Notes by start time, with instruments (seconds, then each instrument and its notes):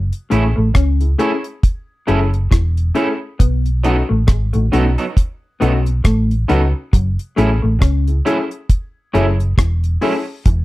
0.13 closed hi-hat
0.30 fingered electric bass A1, clean electric guitar A3 C#4 E4 A4, grand piano A3 C#4 E4 G#4, closed hi-hat
0.56 fingered electric bass A1, clean electric guitar A3
0.74 fingered electric bass C#2, clean electric guitar C#4, kick, cross-stick, closed hi-hat
1.00 grand piano E4 G#4, closed hi-hat
1.18 grand piano A3 C#4 E4 G#4, clean electric guitar A3 C#4 E4 A4, closed hi-hat
1.44 closed hi-hat
1.63 kick, closed hi-hat
2.07 fingered electric bass F#1, clean electric guitar F#3 A3 C#4 E4 A4, grand piano A3 C#4 E4 G#4, closed hi-hat
2.34 closed hi-hat
2.51 fingered electric bass E1, clean electric guitar E3, kick, cross-stick, closed hi-hat
2.77 closed hi-hat
2.95 grand piano A3 C#4 E4 G#4, clean electric guitar A3 C#4 E4 A4, closed hi-hat
3.39 fingered electric bass B1, clean electric guitar B3, kick, closed hi-hat
3.66 closed hi-hat
3.84 clean electric guitar F#3 B3 D#4 A4, grand piano A3 C#4 D#4 F#4, closed hi-hat
4.09 fingered electric bass A1, clean electric guitar A3
4.27 fingered electric bass G#1, clean electric guitar G#3, kick, cross-stick, closed hi-hat
4.53 fingered electric bass A1, clean electric guitar A3, grand piano D#4 F#4, closed hi-hat
4.72 fingered electric bass B1, clean electric guitar F#3 B3 D#4 A4, grand piano A3 C#4 D#4 F#4, closed hi-hat
4.98 clean electric guitar F#3 B3 D#4 A4, closed hi-hat
5.17 kick, closed hi-hat
5.60 fingered electric bass B1, clean electric guitar F#3 B3 D#4 A4, grand piano A3 C#4 D#4 F#4, closed hi-hat
5.86 closed hi-hat
6.04 fingered electric bass A1, clean electric guitar A3, kick, cross-stick, closed hi-hat
6.31 closed hi-hat
6.48 fingered electric bass C#2, clean electric guitar F#3 B3 C#4 D#4 A4, grand piano A3 C#4 D#4 F#4, closed hi-hat
6.93 fingered electric bass F#1, clean electric guitar F#3, kick, closed hi-hat
7.19 closed hi-hat
7.36 fingered electric bass A1, clean electric guitar F#3 A3 C#4 E4 A4, grand piano A3 C#4 E4 G#4, closed hi-hat
7.62 fingered electric bass A1, clean electric guitar A3
7.80 fingered electric bass C#2, clean electric guitar C#4, kick, cross-stick, closed hi-hat
8.07 grand piano E4 G#4, closed hi-hat
8.25 clean electric guitar F#3 C#4 E4 A4, grand piano A3 C#4 E4 G#4, closed hi-hat
8.51 closed hi-hat
8.70 kick, closed hi-hat
9.13 fingered electric bass F#1, clean electric guitar F#3 C#4 E4 A4, grand piano A3 C#4 E4 G#4, closed hi-hat
9.40 closed hi-hat
9.58 fingered electric bass E1, clean electric guitar E3, kick, cross-stick, closed hi-hat
9.84 closed hi-hat
10.01 clean electric guitar F#3 C#4 E4 A4, grand piano A3 C#4 E4 G#4, open hi-hat
10.46 fingered electric bass E1, clean electric guitar E3, kick, closed hi-hat